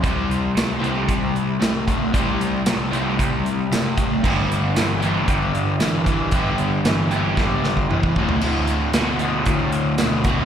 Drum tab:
CC |----------------|----------------|x---------------|----------------|
HH |x-x-x-x-x-x-x-x-|x-x-x-x-x-x-x-x-|--x-x-x-x-x-x-x-|x-x-x-x---------|
TB |----x-------x---|----x-------x---|----x-------x---|----x-----------|
SD |----o-------o---|----o-------o---|----o-------o---|----o---o-o-----|
T1 |----------------|----------------|----------------|---------o------|
T2 |----------------|----------------|----------------|------------o---|
FT |----------------|----------------|----------------|---------------o|
BD |o-------o-----o-|o-------o-----o-|o-------o-----o-|o-------o--o-oo-|

CC |x---------------|
HH |--x-x-x-x-x-x-x-|
TB |----x-------x---|
SD |----o-------o---|
T1 |----------------|
T2 |----------------|
FT |----------------|
BD |--------o-----o-|